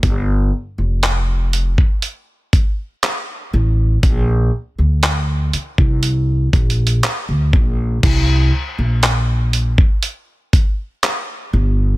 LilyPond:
<<
  \new Staff \with { instrumentName = "Upright bass" } { \clef bass \time 4/4 \key c \dorian \tempo 4 = 60 g,,8 r16 f,,4 r4. r16 a,,8 | bes,,8 r16 d,8. r16 c,8. bes,,8 r16 d,16 bes,,8 | c,8 r16 bes,,4 r4. r16 g,,8 | }
  \new DrumStaff \with { instrumentName = "Drums" } \drummode { \time 4/4 <hh bd>4 <hc hh>8 hh16 bd16 hh8 <hh bd>8 <hc hh>4 | <hh bd>4 <hc hh>8 hh16 bd16 \tuplet 3/2 { hh16 r16 r16 <hh bd>16 hh16 hh16 } <hc hh>8 bd8 | <cymc hh bd>4 <hc hh>8 hh16 bd16 hh8 <hh bd>8 <hc hh>4 | }
>>